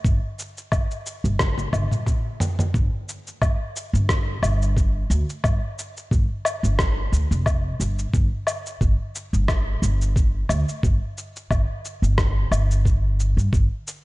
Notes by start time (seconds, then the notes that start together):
0.04 G1, kick, shaker
0.39 shaker
0.58 shaker
0.72 G1, kick, low woodblock, shaker
0.91 shaker
1.06 shaker
1.24 G1, shaker
1.39 kick, cross-stick, high tom, shaker
1.58 high tom, shaker
1.73 G1, high tom, low woodblock, shaker
1.91 mid tom, shaker
2.06 kick, mid tom, shaker
2.40 mid tom, shaker
2.59 mid tom, shaker
2.74 G1, kick, shaker
3.09 shaker
3.27 shaker
3.42 G1, kick, low woodblock, shaker
3.76 shaker
3.93 G1, shaker
4.09 kick, cross-stick, shaker
4.43 G1, low woodblock, shaker
4.62 shaker
4.77 kick, shaker
5.10 D2, shaker
5.30 shaker
5.44 G1, kick, low woodblock, shaker
5.79 shaker
5.97 shaker
6.11 G1, kick, shaker
6.45 low woodblock, shaker
6.63 G1, shaker
6.79 kick, cross-stick, shaker
7.12 D2, shaker
7.31 F1, shaker
7.46 kick, low woodblock, shaker
7.80 G1, shaker
7.99 shaker
8.13 G1, kick, shaker
8.47 low woodblock, shaker
8.66 shaker
8.81 G1, kick, shaker
9.15 shaker
9.33 G1, shaker
9.48 kick, cross-stick, low woodblock, shaker
9.82 G1, shaker
10.02 shaker
10.16 kick, shaker
10.49 D2, low woodblock, shaker
10.69 shaker
10.83 G1, kick, shaker
11.18 shaker
11.36 shaker
11.50 G1, kick, low woodblock, shaker
11.85 shaker
12.02 G1, shaker
12.18 kick, cross-stick, shaker
12.51 G1, low woodblock, shaker
12.71 shaker
12.85 kick, shaker
13.20 shaker
13.37 G2, shaker
13.53 G1, kick, shaker
13.88 shaker